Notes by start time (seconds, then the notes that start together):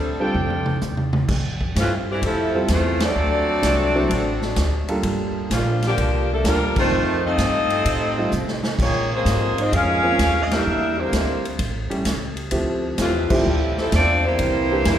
Already playing: D2 C3 D3 G3 A3 C4 D4 A4
0.20 G3 C4 D4 F4 A4 D5 G5
0.34 F2, mid tom
0.50 mid tom
0.66 mid tom
0.81 E2, hi-hat pedal, mid tom
0.97 mid tom
1.13 mid tom
1.28 F2, kick, snare, crash
1.61 kick
1.76 G2 A2 C3 F3, kick, snare, hi-hat pedal, ride
1.80 E3 A3 C4 F4
2.10 E3 G3 A3 C4 G4
2.22 F2 C3 F3 A3 C4 E4 A4, kick, ride
2.54 G3 C4 E4 F4 A4
2.68 E2 E3 A3 C4, kick, snare, hi-hat pedal, ride
2.73 A3 E4 F4 C5
3.00 F#3 A3 C4 D4 F#4 A4 D5, snare, ride
3.16 D2
3.63 C2, kick, snare, hi-hat pedal, ride
3.95 F#3 C4 D4 E4 A4
4.10 A1, kick, ride
4.42 snare
4.56 D2, kick, snare, hi-hat pedal, ride
4.88 G3 A#3 D4 F4 A4, ride
5.03 G1, kick, ride
5.50 A#1 D3 G3 A#3 D4 F4, kick, snare, hi-hat pedal, ride
5.55 A#2 F3
5.82 A#2 D3, snare, ride
5.87 F3 G3 A#3 D4 G4
5.97 C2, kick, ride
6.33 F3 A3 A#3 D4 A4
6.44 D2 D3 F3 G3 A#3 D4 F4 A4 A#4, kick, snare, hi-hat pedal, ride
6.76 D#3 A3 C4 D#4 F4 C5, kick, crash
6.92 F2
7.26 A3 C4 D#4 F4 A4 D#5
7.38 G2, kick, snare, hi-hat pedal, ride
7.70 ride
7.85 A2, kick, ride
8.17 G3 A3 C4 D#4 F4
8.32 C3, hi-hat pedal
8.48 snare
8.63 snare
8.79 A#2 F3 G#3 C#4 F4 C#5, kick, crash
8.83 A#3 G#4
9.13 F3 G#3 A#3 C4 F4 G#4 C5
9.25 G#2, kick, snare, hi-hat pedal, ride
9.58 C4 D#4 F4 G#4 D#5, ride
9.72 F2 G#3 C#4 F4 G#4 A#4 F5, kick, ride
10.03 G#3 A#3 C4 C#4 F4
10.19 D#2, kick, snare, hi-hat pedal, ride
10.42 D#5
10.51 G3 A#3 D4 E4 G4 A#4 E5, snare, ride
10.66 E2
10.98 D3 G3 A#3 C4 E4 G4 C5
11.12 D2, kick, snare, hi-hat pedal, ride
11.45 ride
11.59 A1, kick, ride
11.90 G3 A3 C#4 E4 G4, muted upright bass stroke, ride
12.05 C#2, kick, snare, hi-hat pedal, ride
12.37 ride
12.51 D2 F3 A3 C4 E4 G4, kick, ride
12.98 E2 A2 C3 E3 F3 A3 C4 F4, kick, snare, hi-hat pedal, ride
13.30 A2 C3 F3 G3 A3 C4 E4 G4, muted upright bass stroke, kick, crash
13.46 D2
13.77 C3 F3 A3 C4 E4 A4, snare
13.92 E2 F3 A3 C4 D4 F4 A4 D5, kick, snare, hi-hat pedal, ride
14.26 E3 G3 A#3 C4 E4 G4 C5
14.39 C2, kick, ride
14.71 E3 A#3 C4 D4 G4
14.85 F2, kick, snare, hi-hat pedal, ride